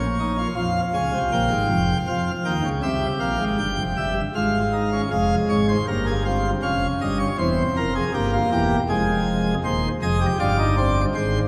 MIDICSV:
0, 0, Header, 1, 2, 480
1, 0, Start_track
1, 0, Tempo, 755668
1, 363, Time_signature, 3, 2, 24, 8
1, 7291, End_track
2, 0, Start_track
2, 0, Title_t, "Pipe organ"
2, 0, Program_c, 0, 19
2, 0, Note_on_c, 0, 34, 64
2, 0, Note_on_c, 0, 46, 57
2, 0, Note_on_c, 0, 73, 82
2, 126, Note_on_c, 0, 63, 67
2, 228, Note_off_c, 0, 63, 0
2, 245, Note_on_c, 0, 65, 59
2, 297, Note_off_c, 0, 46, 0
2, 297, Note_off_c, 0, 73, 0
2, 298, Note_off_c, 0, 34, 0
2, 346, Note_off_c, 0, 65, 0
2, 359, Note_on_c, 0, 65, 72
2, 360, Note_on_c, 0, 41, 86
2, 360, Note_on_c, 0, 53, 82
2, 360, Note_on_c, 0, 77, 75
2, 508, Note_off_c, 0, 53, 0
2, 509, Note_off_c, 0, 41, 0
2, 509, Note_off_c, 0, 77, 0
2, 598, Note_on_c, 0, 37, 85
2, 598, Note_on_c, 0, 49, 78
2, 598, Note_on_c, 0, 80, 72
2, 702, Note_off_c, 0, 37, 0
2, 702, Note_off_c, 0, 49, 0
2, 719, Note_on_c, 0, 36, 77
2, 719, Note_on_c, 0, 48, 71
2, 748, Note_off_c, 0, 80, 0
2, 823, Note_off_c, 0, 36, 0
2, 823, Note_off_c, 0, 48, 0
2, 838, Note_on_c, 0, 34, 85
2, 839, Note_on_c, 0, 79, 78
2, 840, Note_on_c, 0, 46, 88
2, 942, Note_off_c, 0, 34, 0
2, 943, Note_off_c, 0, 46, 0
2, 955, Note_on_c, 0, 32, 74
2, 956, Note_on_c, 0, 44, 80
2, 1061, Note_off_c, 0, 32, 0
2, 1061, Note_off_c, 0, 44, 0
2, 1078, Note_on_c, 0, 29, 82
2, 1079, Note_on_c, 0, 41, 81
2, 1227, Note_off_c, 0, 29, 0
2, 1228, Note_off_c, 0, 41, 0
2, 1252, Note_off_c, 0, 79, 0
2, 1317, Note_on_c, 0, 77, 65
2, 1319, Note_on_c, 0, 41, 89
2, 1319, Note_on_c, 0, 53, 85
2, 1466, Note_off_c, 0, 77, 0
2, 1468, Note_off_c, 0, 41, 0
2, 1468, Note_off_c, 0, 53, 0
2, 1557, Note_on_c, 0, 39, 74
2, 1557, Note_on_c, 0, 79, 67
2, 1559, Note_on_c, 0, 51, 77
2, 1594, Note_off_c, 0, 65, 0
2, 1661, Note_off_c, 0, 39, 0
2, 1662, Note_off_c, 0, 51, 0
2, 1679, Note_on_c, 0, 37, 79
2, 1680, Note_on_c, 0, 49, 66
2, 1705, Note_off_c, 0, 79, 0
2, 1782, Note_off_c, 0, 37, 0
2, 1782, Note_off_c, 0, 49, 0
2, 1797, Note_on_c, 0, 36, 82
2, 1797, Note_on_c, 0, 48, 89
2, 1797, Note_on_c, 0, 67, 73
2, 1797, Note_on_c, 0, 76, 69
2, 1945, Note_off_c, 0, 48, 0
2, 1945, Note_off_c, 0, 76, 0
2, 1946, Note_off_c, 0, 36, 0
2, 2033, Note_on_c, 0, 46, 76
2, 2034, Note_on_c, 0, 34, 77
2, 2034, Note_on_c, 0, 77, 68
2, 2139, Note_off_c, 0, 34, 0
2, 2139, Note_off_c, 0, 46, 0
2, 2157, Note_on_c, 0, 44, 70
2, 2158, Note_on_c, 0, 32, 65
2, 2184, Note_off_c, 0, 77, 0
2, 2261, Note_off_c, 0, 32, 0
2, 2261, Note_off_c, 0, 44, 0
2, 2277, Note_on_c, 0, 31, 81
2, 2277, Note_on_c, 0, 43, 87
2, 2277, Note_on_c, 0, 79, 74
2, 2381, Note_off_c, 0, 31, 0
2, 2382, Note_off_c, 0, 43, 0
2, 2402, Note_on_c, 0, 29, 74
2, 2404, Note_on_c, 0, 41, 67
2, 2428, Note_off_c, 0, 79, 0
2, 2505, Note_off_c, 0, 29, 0
2, 2506, Note_off_c, 0, 41, 0
2, 2523, Note_on_c, 0, 76, 62
2, 2524, Note_on_c, 0, 31, 75
2, 2524, Note_on_c, 0, 43, 80
2, 2627, Note_off_c, 0, 67, 0
2, 2672, Note_off_c, 0, 76, 0
2, 2673, Note_off_c, 0, 31, 0
2, 2673, Note_off_c, 0, 43, 0
2, 2764, Note_on_c, 0, 32, 76
2, 2764, Note_on_c, 0, 44, 73
2, 2765, Note_on_c, 0, 77, 69
2, 2766, Note_on_c, 0, 65, 64
2, 2915, Note_off_c, 0, 65, 0
2, 3003, Note_on_c, 0, 63, 52
2, 3108, Note_off_c, 0, 63, 0
2, 3128, Note_on_c, 0, 61, 51
2, 3180, Note_off_c, 0, 32, 0
2, 3180, Note_off_c, 0, 44, 0
2, 3181, Note_off_c, 0, 77, 0
2, 3231, Note_off_c, 0, 61, 0
2, 3245, Note_on_c, 0, 29, 64
2, 3245, Note_on_c, 0, 41, 69
2, 3246, Note_on_c, 0, 56, 69
2, 3246, Note_on_c, 0, 77, 91
2, 3396, Note_off_c, 0, 29, 0
2, 3396, Note_off_c, 0, 41, 0
2, 3396, Note_off_c, 0, 77, 0
2, 3490, Note_on_c, 0, 44, 70
2, 3490, Note_on_c, 0, 73, 95
2, 3491, Note_on_c, 0, 32, 68
2, 3593, Note_off_c, 0, 73, 0
2, 3611, Note_on_c, 0, 72, 81
2, 3639, Note_off_c, 0, 44, 0
2, 3640, Note_off_c, 0, 32, 0
2, 3661, Note_off_c, 0, 56, 0
2, 3714, Note_off_c, 0, 72, 0
2, 3731, Note_on_c, 0, 31, 76
2, 3733, Note_on_c, 0, 43, 74
2, 3733, Note_on_c, 0, 58, 76
2, 3734, Note_on_c, 0, 70, 84
2, 3836, Note_off_c, 0, 70, 0
2, 3852, Note_on_c, 0, 68, 84
2, 3881, Note_off_c, 0, 58, 0
2, 3955, Note_off_c, 0, 68, 0
2, 3970, Note_on_c, 0, 60, 71
2, 3972, Note_on_c, 0, 65, 85
2, 4120, Note_off_c, 0, 60, 0
2, 4121, Note_off_c, 0, 65, 0
2, 4145, Note_off_c, 0, 31, 0
2, 4147, Note_off_c, 0, 43, 0
2, 4209, Note_on_c, 0, 61, 64
2, 4209, Note_on_c, 0, 77, 87
2, 4210, Note_on_c, 0, 29, 78
2, 4210, Note_on_c, 0, 41, 65
2, 4359, Note_off_c, 0, 77, 0
2, 4360, Note_off_c, 0, 41, 0
2, 4361, Note_off_c, 0, 29, 0
2, 4454, Note_on_c, 0, 31, 66
2, 4454, Note_on_c, 0, 43, 62
2, 4455, Note_on_c, 0, 75, 82
2, 4558, Note_off_c, 0, 75, 0
2, 4569, Note_on_c, 0, 73, 80
2, 4603, Note_off_c, 0, 31, 0
2, 4603, Note_off_c, 0, 43, 0
2, 4625, Note_off_c, 0, 61, 0
2, 4674, Note_off_c, 0, 73, 0
2, 4689, Note_on_c, 0, 40, 76
2, 4690, Note_on_c, 0, 28, 67
2, 4691, Note_on_c, 0, 60, 71
2, 4691, Note_on_c, 0, 72, 88
2, 4839, Note_off_c, 0, 28, 0
2, 4839, Note_off_c, 0, 40, 0
2, 4840, Note_off_c, 0, 72, 0
2, 4932, Note_on_c, 0, 29, 80
2, 4933, Note_on_c, 0, 41, 81
2, 4934, Note_on_c, 0, 70, 98
2, 5037, Note_off_c, 0, 70, 0
2, 5053, Note_on_c, 0, 68, 78
2, 5081, Note_off_c, 0, 29, 0
2, 5082, Note_off_c, 0, 41, 0
2, 5104, Note_off_c, 0, 60, 0
2, 5156, Note_off_c, 0, 68, 0
2, 5169, Note_on_c, 0, 67, 96
2, 5171, Note_on_c, 0, 31, 84
2, 5171, Note_on_c, 0, 43, 87
2, 5172, Note_on_c, 0, 58, 79
2, 5274, Note_off_c, 0, 67, 0
2, 5291, Note_on_c, 0, 65, 78
2, 5320, Note_off_c, 0, 31, 0
2, 5320, Note_off_c, 0, 43, 0
2, 5395, Note_off_c, 0, 65, 0
2, 5412, Note_on_c, 0, 40, 75
2, 5413, Note_on_c, 0, 67, 89
2, 5415, Note_on_c, 0, 28, 80
2, 5561, Note_off_c, 0, 40, 0
2, 5561, Note_off_c, 0, 67, 0
2, 5562, Note_off_c, 0, 28, 0
2, 5585, Note_off_c, 0, 58, 0
2, 5649, Note_on_c, 0, 56, 79
2, 5650, Note_on_c, 0, 29, 85
2, 5650, Note_on_c, 0, 68, 94
2, 5651, Note_on_c, 0, 41, 78
2, 6061, Note_off_c, 0, 29, 0
2, 6061, Note_off_c, 0, 41, 0
2, 6061, Note_off_c, 0, 56, 0
2, 6061, Note_off_c, 0, 68, 0
2, 6125, Note_on_c, 0, 39, 78
2, 6126, Note_on_c, 0, 72, 104
2, 6127, Note_on_c, 0, 27, 78
2, 6275, Note_off_c, 0, 39, 0
2, 6275, Note_off_c, 0, 72, 0
2, 6276, Note_off_c, 0, 27, 0
2, 6366, Note_on_c, 0, 41, 89
2, 6367, Note_on_c, 0, 75, 90
2, 6368, Note_on_c, 0, 29, 84
2, 6368, Note_on_c, 0, 68, 107
2, 6471, Note_off_c, 0, 68, 0
2, 6485, Note_on_c, 0, 67, 96
2, 6515, Note_off_c, 0, 41, 0
2, 6516, Note_off_c, 0, 29, 0
2, 6516, Note_off_c, 0, 75, 0
2, 6589, Note_off_c, 0, 67, 0
2, 6604, Note_on_c, 0, 43, 97
2, 6604, Note_on_c, 0, 74, 90
2, 6605, Note_on_c, 0, 31, 96
2, 6606, Note_on_c, 0, 65, 111
2, 6709, Note_off_c, 0, 65, 0
2, 6725, Note_on_c, 0, 63, 87
2, 6828, Note_off_c, 0, 63, 0
2, 6846, Note_on_c, 0, 60, 105
2, 6994, Note_off_c, 0, 60, 0
2, 7017, Note_off_c, 0, 31, 0
2, 7017, Note_off_c, 0, 43, 0
2, 7017, Note_off_c, 0, 74, 0
2, 7081, Note_on_c, 0, 32, 82
2, 7081, Note_on_c, 0, 72, 102
2, 7082, Note_on_c, 0, 44, 85
2, 7230, Note_off_c, 0, 32, 0
2, 7231, Note_off_c, 0, 44, 0
2, 7231, Note_off_c, 0, 72, 0
2, 7291, End_track
0, 0, End_of_file